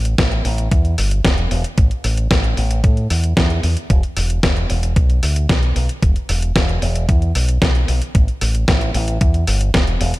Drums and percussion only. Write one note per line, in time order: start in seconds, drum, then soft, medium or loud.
0.05 closed hi-hat medium
0.18 kick loud
0.18 snare loud
0.18 closed hi-hat medium
0.32 closed hi-hat soft
0.45 open hi-hat medium
0.58 closed hi-hat medium
0.71 kick loud
0.71 closed hi-hat medium
0.85 closed hi-hat soft
0.98 open hi-hat loud
1.11 closed hi-hat medium
1.25 kick loud
1.25 snare loud
1.25 closed hi-hat medium
1.38 closed hi-hat soft
1.51 open hi-hat medium
1.64 closed hi-hat medium
1.78 kick loud
1.78 closed hi-hat medium
1.91 closed hi-hat soft
2.04 open hi-hat loud
2.17 closed hi-hat medium
2.31 kick loud
2.31 snare loud
2.31 closed hi-hat medium
2.44 closed hi-hat soft
2.57 open hi-hat medium
2.71 closed hi-hat medium
2.84 kick loud
2.84 closed hi-hat medium
2.97 closed hi-hat soft
3.10 open hi-hat loud
3.24 closed hi-hat medium
3.37 kick loud
3.37 snare loud
3.37 closed hi-hat soft
3.50 closed hi-hat soft
3.63 open hi-hat medium
3.77 closed hi-hat medium
3.90 kick loud
3.90 closed hi-hat medium
4.03 closed hi-hat soft
4.17 open hi-hat loud
4.30 closed hi-hat medium
4.43 kick loud
4.43 snare loud
4.43 closed hi-hat soft
4.56 closed hi-hat soft
4.70 open hi-hat medium
4.83 closed hi-hat medium
4.96 kick loud
4.96 closed hi-hat medium
5.10 closed hi-hat soft
5.23 open hi-hat loud
5.36 closed hi-hat medium
5.49 kick loud
5.49 snare loud
5.49 closed hi-hat soft
5.63 closed hi-hat soft
5.76 open hi-hat medium
5.89 closed hi-hat medium
6.02 kick loud
6.02 closed hi-hat medium
6.16 closed hi-hat soft
6.29 open hi-hat loud
6.42 closed hi-hat soft
6.56 kick loud
6.56 snare loud
6.56 closed hi-hat soft
6.69 closed hi-hat soft
6.82 open hi-hat medium
6.95 closed hi-hat medium
7.09 kick loud
7.09 closed hi-hat medium
7.22 closed hi-hat soft
7.35 open hi-hat loud
7.49 closed hi-hat medium
7.62 kick loud
7.62 snare loud
7.62 closed hi-hat medium
7.75 closed hi-hat soft
7.88 open hi-hat medium
8.02 closed hi-hat medium
8.15 kick loud
8.15 closed hi-hat medium
8.28 closed hi-hat soft
8.41 open hi-hat loud
8.55 closed hi-hat medium
8.68 kick loud
8.68 snare loud
8.68 closed hi-hat medium
8.81 closed hi-hat soft
8.94 open hi-hat medium
9.08 closed hi-hat medium
9.21 kick loud
9.21 closed hi-hat medium
9.34 closed hi-hat soft
9.47 open hi-hat loud
9.61 closed hi-hat medium
9.74 kick loud
9.74 snare loud
9.74 closed hi-hat medium
9.87 closed hi-hat soft
10.01 open hi-hat loud
10.14 closed hi-hat medium